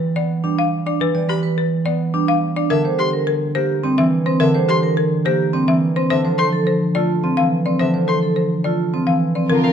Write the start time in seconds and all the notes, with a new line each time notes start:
Already playing: E3 G3
0.16 B3 D5
0.44 G3 D4
0.59 F5
0.86 D4 D5
1.00 E3 B4
1.14 G3 D5
1.29 G4 B5
1.43 B4
1.58 B4
1.85 B3 D5
2.13 G3 D4
2.28 F5
2.56 D4 D5
2.70 D3 A#4 E5
2.84 G3 C5
2.99 G4 C6
3.13 A#4
3.27 A#4
3.55 A#3 G4 C5
3.83 G3 C4
3.98 E3 E5
4.26 C4 C5
4.40 D3 A#4 E5
4.54 G3 C5
4.69 G4 C6
4.83 A#4
4.97 A#4
5.25 A#3 G4 C5
5.53 G3 C4
5.68 E3 E5
5.96 C4 C5
6.10 D3 C5 E5
6.24 F3 C5
6.38 A4 C6
6.53 A4
6.67 C5
6.95 A3 F4 D5
7.23 F3 C4
7.37 E3 F5
7.66 C4 D5
7.79 D3 C5 E5
7.94 F3 C5
8.08 A4 C6
8.23 A4
8.36 C5
8.64 A3 F4 D5
8.93 F3 C4
9.07 E3 F5
9.35 C4 D5
9.49 D3 C4 F4 A#4
9.64 G3 F5